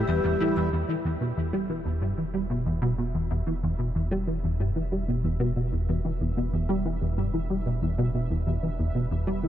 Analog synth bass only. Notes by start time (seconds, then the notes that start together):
0.08 E2
0.24 E2
0.40 E3
0.57 E2
0.73 E2
0.88 E3
1.05 E2
1.21 B2
1.37 E2
1.53 G3
1.69 E3
1.85 E2
2.01 G2
2.18 E3
2.34 G3
2.50 B2
2.66 E2
2.82 B2
2.98 B2
3.14 E2
3.31 E2
3.47 E3
3.63 E2
3.79 B2
3.95 E2
4.11 G3
4.27 E3
4.44 E2
4.60 G2
4.76 E3
4.92 G3
5.08 B2
5.24 E2
5.40 B2
5.56 B2
5.72 E2
5.89 E2
6.05 E3
6.21 E2
6.37 B2
6.53 E2
6.69 G3
6.85 E3
7.01 E2
7.17 G2
7.34 E3
7.50 G3
7.66 B2
7.82 E2
7.98 B2
8.14 B2
8.30 E2
8.47 E2
8.63 E3
8.79 E2
8.95 B2
9.11 E2
9.27 G3
9.43 E3